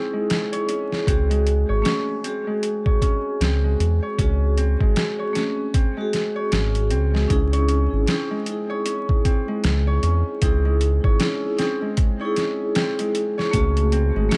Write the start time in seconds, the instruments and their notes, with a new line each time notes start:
Already playing: harp G#3 C4, vibraphone D#4 E4 G#4
0.13 harp G#3
0.30 snare, closed hi-hat
0.52 harp C#5, closed hi-hat
0.68 harp C#4, closed hi-hat
0.92 snare
1.07 analog synth bass C#2, harp C4, vibraphone F#4 G#4, kick, closed hi-hat
1.30 harp G#3, closed hi-hat
1.47 closed hi-hat
1.69 analog synth bass G#1, harp C#5
1.82 vibraphone A3 C#4 F#4, harp C#4, snare, closed hi-hat
1.86 vibraphone G#4
2.24 harp C4, vibraphone F#4 G#4, closed hi-hat
2.47 harp G#3
2.63 closed hi-hat
2.86 harp C#5, kick
3.02 harp C#4, kick, closed hi-hat
3.40 analog synth bass C#2, harp C4, snare, closed hi-hat
3.64 harp G#3
3.80 analog synth bass E2, closed hi-hat
4.03 harp C#5
4.19 analog synth bass C#2, harp C#4, vibraphone F#4 G#4, kick, closed hi-hat
4.58 harp C4, closed hi-hat
4.81 analog synth bass G#1, harp G#3, kick
4.96 vibraphone F#4 G#4, snare, closed hi-hat
5.19 harp C#5
5.33 vibraphone A3 C#4 F#4, harp C#4, snare, closed hi-hat
5.37 vibraphone G#4
5.74 harp C4, kick, closed hi-hat
5.97 harp G#3, vibraphone F#4
6.01 vibraphone G#4
6.13 snare, closed hi-hat
6.36 harp C#5
6.51 analog synth bass G#1, harp C#4, snare, closed hi-hat
6.75 closed hi-hat
6.91 analog synth bass C#2, harp C4, closed hi-hat
7.14 harp G#3, snare
7.28 analog synth bass C#2, vibraphone C#4 D#4 E4 G#4, kick, closed hi-hat
7.53 harp C#5, closed hi-hat
7.68 harp C#4, closed hi-hat
7.93 analog synth bass G#1
8.06 harp C4, vibraphone C#4 D#4 E4, snare, closed hi-hat
8.11 vibraphone G#4
8.31 harp G#3
8.46 vibraphone D#4 E4, closed hi-hat
8.52 vibraphone G#4
8.70 harp C#5
8.85 harp C#4, closed hi-hat
9.09 kick
9.25 harp C4, kick, closed hi-hat
9.48 harp G#3
9.64 analog synth bass C#2, snare, closed hi-hat
9.87 harp C#5
10.03 analog synth bass E2, harp C#4, closed hi-hat
10.42 analog synth bass C#2, harp C4, vibraphone D#4 E4 G#4, kick, closed hi-hat
10.65 harp G#3
10.81 closed hi-hat
11.04 analog synth bass G#1, harp C#5, kick
11.20 harp C#4, vibraphone D#4 E4 G#4, snare, closed hi-hat
11.57 harp C4, vibraphone C#4 D#4 E4, snare, closed hi-hat
11.61 vibraphone G#4
11.82 harp G#3
11.97 kick, closed hi-hat
12.20 vibraphone D#4 E4, harp C#5
12.25 vibraphone G#4
12.36 harp C#4, snare, closed hi-hat
12.75 harp C4, snare, closed hi-hat
12.99 harp G#3, closed hi-hat
13.15 closed hi-hat
13.38 harp C#5, snare
13.51 analog synth bass C#2, vibraphone A3 F#4, harp C#4, kick, closed hi-hat, riser
13.55 vibraphone G#4
13.77 closed hi-hat
13.92 harp C4, closed hi-hat
14.16 analog synth bass G#1, harp G#3
14.29 vibraphone A3 C#4 F#4, snare, closed hi-hat
14.34 vibraphone G#4